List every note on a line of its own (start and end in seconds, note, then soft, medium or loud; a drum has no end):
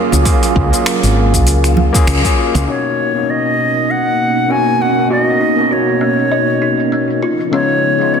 0.00 2.64 F#3 medium
0.00 0.22 A#3 medium
0.00 2.64 A#3 medium
0.00 0.22 C#4 medium
0.00 0.23 F4 medium
0.00 2.64 F4 medium
0.00 0.23 G#4 medium
0.12 0.23 C#2 medium
0.12 low conga medium
0.12 shaker medium
0.24 0.68 A#3 medium
0.24 0.69 C#4 medium
0.24 0.69 F4 medium
0.24 0.69 G#4 medium
0.24 kick loud
0.24 open hi-hat medium
0.24 shaker soft
0.43 open hi-hat soft
0.43 shaker soft
0.56 0.70 C#2 medium
0.56 kick loud
0.70 1.90 A#3 medium
0.70 1.90 C#4 medium
0.70 1.91 F4 medium
0.70 open hi-hat soft
0.70 shaker medium
0.75 1.92 G#4 medium
0.86 finger snap loud
0.86 open hi-hat medium
0.86 shaker medium
1.03 1.46 G#1 medium
1.03 open hi-hat soft
1.03 shaker soft
1.34 kick medium
1.34 open hi-hat soft
1.34 shaker medium
1.46 1.89 C#2 medium
1.46 open hi-hat medium
1.46 shaker medium
1.64 finger snap soft
1.64 open hi-hat soft
1.64 shaker soft
1.77 high conga medium
1.93 2.20 A#3 loud
1.93 2.20 C#4 medium
1.93 2.21 F4 medium
1.93 2.21 G#4 loud
1.93 kick loud
1.93 open hi-hat soft
1.93 shaker medium
2.07 2.21 C#2 medium
2.07 finger snap medium
2.07 open hi-hat medium
2.07 shaker soft
2.23 2.64 A#3 medium
2.23 2.65 C#4 medium
2.23 2.65 F4 medium
2.23 2.65 G#4 loud
2.23 kick medium
2.23 open hi-hat soft
2.23 shaker soft
2.54 2.65 C#2 medium
2.54 open hi-hat soft
2.54 low conga medium
2.54 shaker medium
2.66 3.11 B2 medium
2.66 7.19 B2 medium
2.66 3.11 A#3 medium
2.66 7.19 A#3 medium
2.66 3.11 C#4 medium
2.66 2.97 C#4 medium
2.66 7.19 C#4 medium
2.66 3.12 D#4 medium
2.66 7.19 D#4 medium
2.66 3.12 F#4 medium
2.66 3.32 C#5 medium
2.66 shaker soft
2.86 shaker soft
3.13 4.45 B2 medium
3.13 4.46 A#3 medium
3.13 4.47 C#4 medium
3.13 4.47 D#4 medium
3.13 shaker medium
3.18 4.48 F#4 medium
3.29 3.92 D#5 medium
3.29 shaker soft
3.47 shaker soft
3.77 shaker medium
3.90 4.53 F#5 medium
3.90 shaker soft
4.07 shaker soft
4.38 shaker medium
4.49 4.76 B2 medium
4.49 4.77 A#3 medium
4.49 4.77 C#4 medium
4.49 4.79 C#4 medium
4.49 4.77 D#4 medium
4.49 4.78 F#4 medium
4.49 4.83 G#5 medium
4.49 shaker soft
4.68 shaker soft
4.79 5.07 B2 medium
4.79 5.07 A#3 medium
4.79 5.07 C#4 medium
4.79 5.08 D#4 medium
4.79 5.08 F#4 medium
4.79 5.11 F#5 medium
4.98 shaker medium
5.09 5.53 B2 medium
5.09 5.54 A#3 medium
5.09 5.54 C#4 medium
5.09 5.54 D#4 medium
5.09 5.38 F#4 medium
5.09 5.55 F#4 medium
5.09 5.74 D#5 medium
5.09 shaker soft
5.29 shaker soft
5.41 5.69 D#4 medium
5.55 7.20 B2 medium
5.55 7.20 A#3 medium
5.55 7.21 C#4 medium
5.55 7.22 D#4 medium
5.55 shaker medium
5.60 7.22 F#4 medium
5.71 5.99 F#4 medium
5.71 7.23 C#5 medium
5.71 shaker soft
5.89 shaker soft
6.01 6.29 C#4 medium
6.19 shaker medium
6.32 6.59 D#5 medium
6.32 shaker soft
6.49 shaker soft
6.62 6.80 D#4 medium
6.80 shaker medium
6.92 7.21 C#4 medium
6.92 shaker soft
7.10 shaker soft
7.22 8.20 C#3 medium
7.22 8.20 F3 medium
7.22 8.20 B3 medium
7.22 8.20 D#4 medium
7.22 7.52 F4 medium
7.40 shaker medium
7.51 7.96 C#3 medium
7.51 7.96 G#3 medium
7.51 7.96 B3 medium
7.51 7.82 C#4 medium
7.51 7.97 D#4 medium
7.51 7.97 F4 medium
7.51 8.15 C#5 medium
7.51 shaker soft
7.71 shaker soft
7.98 8.20 C#3 medium
7.98 8.20 G#3 medium
7.98 8.20 B3 medium
7.98 8.20 D#4 medium
7.98 shaker medium
8.03 8.20 F4 medium
8.14 8.20 D#5 medium
8.14 shaker soft